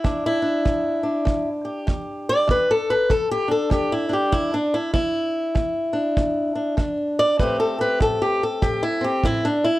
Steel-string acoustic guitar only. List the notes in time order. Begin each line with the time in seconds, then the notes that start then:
Already playing: E4
0.04 E2 D4
0.26 E4
0.42 D4
0.65 E2
1.03 D4
1.25 E2
1.65 G4
1.87 E2
2.29 D5
2.48 E2 B4
2.71 A4
2.90 B4
3.10 E2 A4
3.32 G4
3.48 D4 A4
3.70 E2 G4
3.92 E4
4.09 D4
4.13 G4
4.32 E2 E4
4.54 D4
4.74 E4
4.94 E2 E4
5.55 E2
5.93 D4
6.17 E2
6.55 D4
6.77 E2 D4
7.19 D5
7.39 A2 A3 C4 G4 B4
7.60 A4
7.78 G4 B4
8.00 A2 A4
8.22 G4
8.43 A4
8.62 A2 G4
8.83 E4
9.01 C4 G4
9.25 A2 E4
9.45 D4
9.64 E4